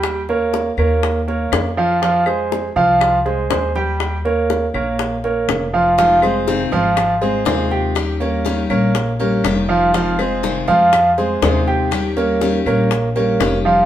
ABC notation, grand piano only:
X:1
M:4/4
L:1/8
Q:1/4=121
K:Ebmix
V:1 name="Grand piano"
[G,Gg] [B,Bd]2 [B,Bd]2 [B,Bd]2 [F,Ff] | [F,Ff] [A,Ac]2 [F,Ff]2 [A,Ac] [A,Ac] [G,Gg]- | [G,Gg] [B,Bd]2 [B,Bd]2 [B,Bd]2 [F,Ff] | [F,Ff] [A,Ac]2 [F,Ff]2 [A,Ac] [A,Ac] [Gg]- |
[Gg] [B,Bd]2 [B,Bd]2 [B,Bd]2 [F,Ff] | [F,Ff] [A,Ac]2 [F,Ff]2 [A,Ac] [A,Ac] [Gg]- | [Gg] [B,Bd]2 [B,Bd]2 [B,Bd]2 [F,Ff] |]